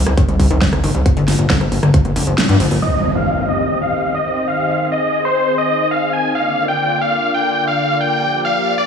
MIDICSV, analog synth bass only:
0, 0, Header, 1, 2, 480
1, 0, Start_track
1, 0, Key_signature, -3, "minor"
1, 0, Tempo, 441176
1, 1151, Time_signature, 4, 2, 24, 8
1, 9645, End_track
2, 0, Start_track
2, 0, Title_t, "Analog synth bass"
2, 0, Program_c, 0, 38
2, 71, Note_on_c, 0, 36, 90
2, 148, Note_off_c, 0, 36, 0
2, 311, Note_on_c, 0, 36, 85
2, 388, Note_off_c, 0, 36, 0
2, 430, Note_on_c, 0, 36, 98
2, 508, Note_off_c, 0, 36, 0
2, 551, Note_on_c, 0, 36, 89
2, 628, Note_off_c, 0, 36, 0
2, 791, Note_on_c, 0, 36, 93
2, 868, Note_off_c, 0, 36, 0
2, 911, Note_on_c, 0, 31, 102
2, 988, Note_off_c, 0, 31, 0
2, 1031, Note_on_c, 0, 36, 91
2, 1108, Note_off_c, 0, 36, 0
2, 1271, Note_on_c, 0, 31, 84
2, 1348, Note_off_c, 0, 31, 0
2, 1391, Note_on_c, 0, 31, 101
2, 1468, Note_off_c, 0, 31, 0
2, 1511, Note_on_c, 0, 31, 95
2, 1588, Note_off_c, 0, 31, 0
2, 1751, Note_on_c, 0, 31, 88
2, 1828, Note_off_c, 0, 31, 0
2, 1871, Note_on_c, 0, 31, 96
2, 1948, Note_off_c, 0, 31, 0
2, 1990, Note_on_c, 0, 31, 97
2, 2068, Note_off_c, 0, 31, 0
2, 2230, Note_on_c, 0, 31, 84
2, 2308, Note_off_c, 0, 31, 0
2, 2350, Note_on_c, 0, 29, 99
2, 2428, Note_off_c, 0, 29, 0
2, 2471, Note_on_c, 0, 31, 92
2, 2548, Note_off_c, 0, 31, 0
2, 2711, Note_on_c, 0, 43, 91
2, 2788, Note_off_c, 0, 43, 0
2, 2830, Note_on_c, 0, 31, 101
2, 2908, Note_off_c, 0, 31, 0
2, 2950, Note_on_c, 0, 31, 93
2, 3028, Note_off_c, 0, 31, 0
2, 9645, End_track
0, 0, End_of_file